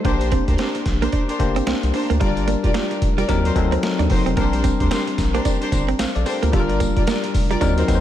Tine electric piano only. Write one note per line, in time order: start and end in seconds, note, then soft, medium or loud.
0.04 0.90 A#3 medium
0.04 0.90 D4 medium
0.04 0.90 G4 medium
0.04 0.90 C5 medium
1.39 2.05 A#3 medium
1.39 2.05 D4 medium
1.39 2.05 G4 medium
1.39 2.05 C5 medium
2.20 3.06 G3 medium
2.20 3.06 D4 medium
2.20 3.06 F4 medium
2.20 3.06 A#4 medium
3.28 3.51 F#3 medium
3.28 3.51 C4 medium
3.28 3.52 D#4 medium
3.28 3.52 A#4 loud
3.55 4.21 F#3 medium
3.55 4.21 C4 medium
3.55 4.21 D#4 medium
3.55 4.21 A4 medium
4.36 5.22 G3 medium
4.36 5.22 C4 medium
4.36 5.22 D4 medium
4.36 5.22 A#4 medium
5.99 6.15 C5 medium
5.99 6.15 F5 medium
6.15 6.26 A4 medium
6.15 6.26 D5 medium
6.26 6.42 G4 medium
6.26 6.42 C5 medium
6.42 6.52 F4 medium
6.42 6.59 A#4 medium
6.52 7.38 G3 medium
6.52 7.38 D4 medium
6.52 7.38 F4 medium
6.52 6.61 A4 medium
6.60 7.42 A#4 medium
7.61 7.84 F#3 medium
7.61 7.84 C4 medium
7.61 7.84 D#4 medium
7.61 7.84 A#4 loud
7.88 8.00 F#3 medium
7.88 8.00 C4 medium
7.88 8.00 D#4 medium
7.88 7.96 B4 medium
7.95 8.00 C5 medium